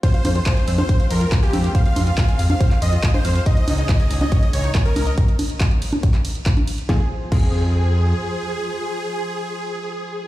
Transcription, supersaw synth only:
\new Staff \with { instrumentName = "Supersaw synth" } { \time 4/4 \key f \minor \tempo 4 = 140 c''8 r16 c''8. r16 c''8 r16 bes'8 r16 g'8 r16 | f''8 r16 f''8. r16 f''8 r16 ees''8 r16 c''8 r16 | ees''8 r16 ees''8. r16 ees''8 r16 des''8 r16 bes'8 r16 | r1 |
aes'16 r8. aes'2.~ | aes'1 | }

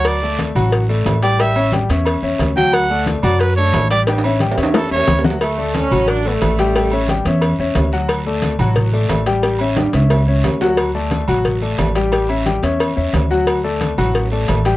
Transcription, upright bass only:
\new Staff \with { instrumentName = "Upright bass" } { \clef bass \time 4/4 \key d \major \tempo 4 = 179 d,4. a,,4. a,,4~ | a,,4. e,4 e,8 d,4~ | d,4. fis,4. a,,4~ | a,,4. e,4 e,8 d,4~ |
d,4. a,,4. a,,4~ | a,,4. e,4 e,8 d,4~ | d,4. a,,4. a,,4~ | a,,4. cis,4. d,4~ |
d,4. a,,4. a,,4~ | a,,4. e,4 e,8 d,4~ | d,4. a,,4. a,,4 | }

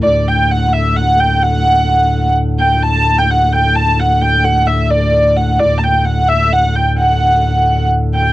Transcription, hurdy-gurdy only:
\new Staff \with { instrumentName = "Hurdy-gurdy" } { \time 6/8 \key d \major \tempo 4. = 86 d''8 g''8 fis''16. fis''32 e''8 fis''8 g''8 | fis''2 r8 g''8 | a''8. g''16 fis''8 g''8 a''8 fis''8 | g''8 fis''8 e''8 d''4 fis''8 |
d''16. a''32 g''8 fis''8 e''8 fis''8 g''8 | fis''2 r8 g''8 | }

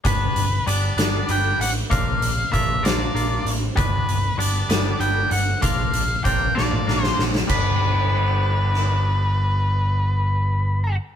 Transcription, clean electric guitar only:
\new Staff \with { instrumentName = "Clean electric guitar" } { \time 6/8 \key g \major \tempo 4. = 65 <g b d' b'>8 r8 <g b d' b'>8 <g b d' b'>8 <g b d' b'>8 r8 | <bes d' f' bes'>8 r8 <bes d' f' bes'>8 <bes d' f' bes'>8 <bes d' f' bes'>8 r8 | <g b d' b'>8 r8 <g b d' b'>8 <g b d' b'>8 <g b d' b'>8 r8 | <bes d' f' bes'>8 r8 <bes d' f' bes'>8 <bes d' f' bes'>8 <bes d' f' bes'>8 r8 |
<g b d' b'>2.~ | <g b d' b'>2. | }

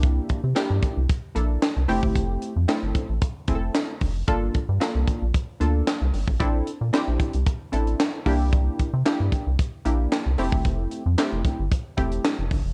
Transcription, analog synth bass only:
\new Staff \with { instrumentName = "Analog synth bass" } { \clef bass \time 4/4 \key f \major \tempo 4 = 113 c,8 r16 c16 r16 g,16 r16 c,16 r8 bes,,8 r16 c,16 f,,16 g,,16 | f,,8 r16 f,16 r16 g,,16 r16 a,,16 r8 f,,8 r8 f,,8 | g,,8 r16 g,16 r16 c,16 r16 bes,,16 r8 d,8 r16 c,16 g,,16 a,,16 | bes,,8 r16 bes,16 r16 bes,,16 r16 c,16 r8 a,,8 r8 c,8~ |
c,8 r16 c16 r16 g,16 r16 c,16 r8 bes,,8 r16 c,16 f,,16 g,,16 | f,,8 r16 f,16 r16 f,,16 r16 g,,16 r8 e,,8 r16 f,,16 g,,16 f,,16 | }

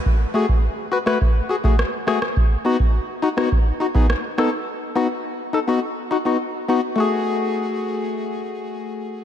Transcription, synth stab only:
\new Staff \with { instrumentName = "Synth stab" } { \time 4/4 \key fis \dorian \tempo 4 = 104 r8 <a fis' gis'>16 r8. <fis' b'>16 <a fis' b'>16 r8 <fis' gis'>16 <a fis' gis'>16 r8 <a fis' gis'>16 r16 | r8 <b dis' fis'>16 r8. <dis' fis'>16 <b dis' fis'>16 r8 <dis' fis'>16 <b dis' gis'>16 r8 <b dis' a'>16 r16 | r8 <b dis' fis'>16 r8. <dis' a'>16 <b dis' fis'>16 r8 <dis' fis'>16 <b dis' fis'>16 r8 <b dis' fis'>16 r16 | <a fis' gis'>1 | }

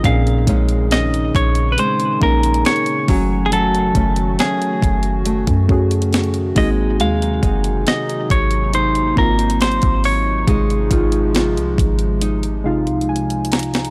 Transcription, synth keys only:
\new Staff \with { instrumentName = "Synth keys" } { \time 4/4 \key des \major \tempo 4 = 69 << { r1 | r1 | r1 | r2 r8 f''8 aes''8 bes''8 | } \\ { <c' des' ees' aes'>4~ <c' des' ees' aes'>16 r4 r16 <bes des' ees' bes'>4 <a des' ges' aes''>8~ | <a des' ges' aes''>4 r4. <a des' ges' aes'>4 <bes c' ees' ges'>8~ | <bes c' ees' ges'>4 r4. <bes c' ees' f'>4 r8 | <c aes ees' f'>4~ <c aes ees' f'>16 r4 r16 <c aes ees' f'>4 r8 | } >> }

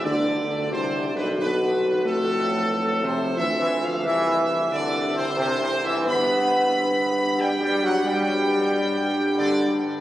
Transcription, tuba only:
\new Staff \with { instrumentName = "Tuba" } { \clef bass \time 3/4 \key g \major \tempo 4 = 90 d,4 \tuplet 3/2 { c,4 b,,8 } b,,4 | f,2 d,4 | c,2. | g,2.~ |
g,2. | }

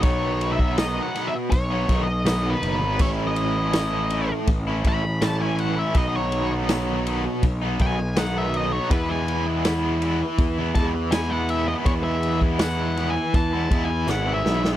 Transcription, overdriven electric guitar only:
\new Staff \with { instrumentName = "Overdriven electric guitar" } { \time 4/4 \key b \mixolydian \tempo 4 = 81 <b, dis fis b dis'>8. <fis b dis'>16 <b, dis fis b dis'>8 <dis fis b dis'>8. <fis b dis'>16 <dis fis b dis'>8 <b, dis fis b dis'>16 <fis b dis'>8 <fis b dis'>16 | <a, e a cis' e'>8. <a cis' e'>16 <a, e a cis' e'>8 <e a cis' e'>8. <a cis' e'>16 <e a cis' e'>8 <a, e a cis' e'>16 <a cis' e'>8 <a cis' e'>16 | <b, dis fis b dis'>8. <fis b dis'>16 <b, dis fis b dis'>8 <dis fis b dis'>8. <fis b dis'>16 <dis fis b dis'>8 <b, dis fis b dis'>16 <fis b dis'>8 <fis b dis'>16 | <e gis b e'>8. <gis b e'>16 <e gis b e'>8 <e gis b e'>8. <gis b e'>16 <e gis b e'>8 <e gis b e'>16 <gis b e'>8 <gis b e'>16 |
<e gis b e'>8. <gis b e'>16 <e gis b e'>8 <e gis b e'>8. <gis b e'>16 <e gis b e'>8 <e gis b e'>16 <gis b e'>8 <gis b e'>16 | }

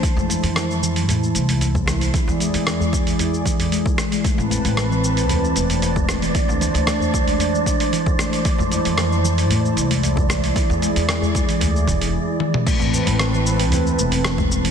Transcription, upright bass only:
\new Staff \with { instrumentName = "Upright bass" } { \clef bass \time 4/4 \key a \minor \tempo 4 = 114 r16 f,16 r16 f,4~ f,16 a,16 r16 c,4~ c,16 r16 | r16 e,16 r16 e,4 r2 r16 | r16 a,,16 r16 a,,4~ a,,16 d,16 r16 e,,4~ e,,16 r16 | r16 d,16 r16 d,4 r2 r16 |
r16 f,16 r16 f,4~ f,16 a,16 r16 c,4~ c,16 r16 | r16 e,16 r16 e,4 r16 d,8 e,,8 r4 | r16 a,,16 r16 a,,4~ a,,16 d,16 r16 e,,4~ e,,16 r16 | }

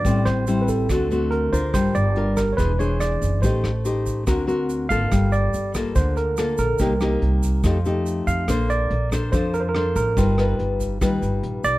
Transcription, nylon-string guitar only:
\new Staff \with { instrumentName = "Nylon-string guitar" } { \time 4/4 \key g \minor \tempo 4 = 142 << { <g c' e'>4 <g c' e'>4 <a c' fis'>8 <a c' fis'>4 <d' f' bes'>8~ | <d' f' bes'>4 <d' f' bes'>8 r8 <d' gis' c''>8 <d' gis' c''>4. | <ees' g' c''>8 r8 <ees' g' c''>4 <c' fis' ais'>8 <c' fis' ais'>4 <ais eis' a'>8~ | <ais eis' a'>4 r8 <bes f' a'>4. <bes f' a'>8 r8 |
<bes ees' g'>8 <bes ees' g'>4. <a ees' g'>8 <a ees' g'>4. | <d' a' c''>4 r8 <d' a' c''>8 <d' a' c''>4 <d' a' c''>4 | <dis' f' b'>8 <dis' f' b'>4. <dis' f' b'>2 | } \\ { a,2 d2 | g2 e2 | a2 d2 | g2 d2 |
c2 f2 | bes2 f2 | g2 g2 | } >> }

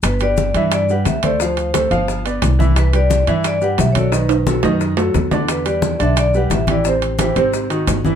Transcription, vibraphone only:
\new Staff \with { instrumentName = "Vibraphone" } { \time 4/4 \key g \major \tempo 4 = 176 b'8 d''4 e''8 d''8 fis''8 e''8 d''8 | c''2 r2 | b'8 d''4 e''8 d''8 fis''8 e''16. cis''32 d''8 | b'2 r2 |
b'8 d''4 e''8 d''8 fis''8 e''8 d''8 | c''2 r2 | }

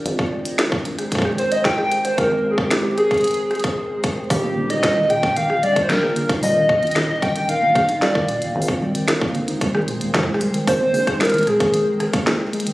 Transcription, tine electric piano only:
\new Staff \with { instrumentName = "Tine electric piano" } { \clef bass \time 4/4 \key aes \lydian \tempo 4 = 113 r1 | r1 | ees16 bes16 d16 ees'16 g16 ees16 bes,16 ees,16 ees16 r16 g16 ees16 ees16 bes16 d16 ees'16 | g16 ees16 bes,16 ees,16 ees16 r16 g16 ees16 ees16 bes16 d16 ees'16 g16 ees16 bes,16 ees,16 |
ees16 r16 g16 ees16 ees16 bes16 d16 ees'16 g16 ees16 bes,16 ees,16 ees16 r16 g16 ees16 | ees16 bes16 d16 ees'16 g16 ees16 bes,16 ees,16 ees16 r16 ees16 bes16 ees16 r16 aes16 ees16 | }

